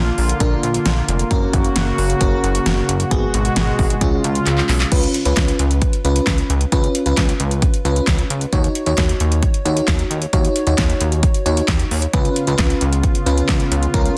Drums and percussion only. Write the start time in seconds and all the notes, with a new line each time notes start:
0.18 open hi-hat
0.29 closed hi-hat
0.40 kick, closed hi-hat
0.63 closed hi-hat
0.74 closed hi-hat
0.86 snare, closed hi-hat
1.08 closed hi-hat
1.19 closed hi-hat
1.31 kick, closed hi-hat
1.53 kick, closed hi-hat
1.65 closed hi-hat
1.76 snare, closed hi-hat
1.98 open hi-hat
2.10 closed hi-hat
2.21 kick, closed hi-hat
2.44 closed hi-hat
2.55 closed hi-hat
2.66 snare, closed hi-hat
2.89 closed hi-hat
3.00 closed hi-hat
3.11 kick, closed hi-hat
3.34 closed hi-hat
3.45 closed hi-hat
3.56 snare, closed hi-hat
3.79 kick, open hi-hat
3.90 closed hi-hat
4.01 kick, closed hi-hat
4.24 closed hi-hat
4.35 closed hi-hat
4.46 clap, closed hi-hat
4.58 clap
4.69 clap, open hi-hat
4.80 clap, closed hi-hat
4.92 kick, closed hi-hat, crash
5.03 closed hi-hat
5.14 closed hi-hat
5.25 closed hi-hat
5.37 kick, snare, clap, closed hi-hat
5.48 closed hi-hat
5.59 closed hi-hat
5.71 closed hi-hat
5.82 kick, closed hi-hat
5.93 closed hi-hat
6.05 closed hi-hat
6.16 closed hi-hat
6.27 kick, snare, clap, closed hi-hat
6.38 closed hi-hat
6.50 closed hi-hat
6.61 closed hi-hat
6.72 kick, closed hi-hat
6.84 closed hi-hat
6.95 closed hi-hat
7.06 closed hi-hat
7.17 kick, snare, clap, closed hi-hat
7.29 closed hi-hat
7.40 closed hi-hat
7.51 closed hi-hat
7.62 kick, closed hi-hat
7.74 closed hi-hat
7.85 closed hi-hat
7.96 closed hi-hat
8.07 kick, snare, clap, closed hi-hat
8.19 closed hi-hat
8.30 closed hi-hat
8.41 closed hi-hat
8.53 kick, closed hi-hat
8.64 closed hi-hat
8.75 closed hi-hat
8.86 closed hi-hat
8.98 kick, snare, clap, closed hi-hat
9.09 closed hi-hat
9.20 closed hi-hat
9.32 closed hi-hat
9.43 kick, closed hi-hat
9.54 closed hi-hat
9.66 closed hi-hat
9.77 closed hi-hat
9.88 kick, snare, clap, closed hi-hat
9.99 closed hi-hat
10.11 closed hi-hat
10.22 closed hi-hat
10.33 kick, closed hi-hat
10.45 closed hi-hat
10.56 closed hi-hat
10.67 closed hi-hat
10.78 kick, snare, clap, closed hi-hat
10.90 closed hi-hat
11.01 closed hi-hat
11.12 closed hi-hat
11.23 kick, closed hi-hat
11.34 closed hi-hat
11.46 closed hi-hat
11.57 closed hi-hat
11.68 kick, snare, clap, closed hi-hat
11.79 closed hi-hat
11.91 open hi-hat
12.02 closed hi-hat
12.13 kick, closed hi-hat
12.25 closed hi-hat
12.36 closed hi-hat
12.47 closed hi-hat
12.58 kick, snare, clap, closed hi-hat
12.70 closed hi-hat
12.81 closed hi-hat
12.93 closed hi-hat
13.03 kick, closed hi-hat
13.15 closed hi-hat
13.27 closed hi-hat
13.38 closed hi-hat
13.49 kick, snare, clap, closed hi-hat
13.60 closed hi-hat
13.72 closed hi-hat
13.83 closed hi-hat
13.94 kick, closed hi-hat
14.06 closed hi-hat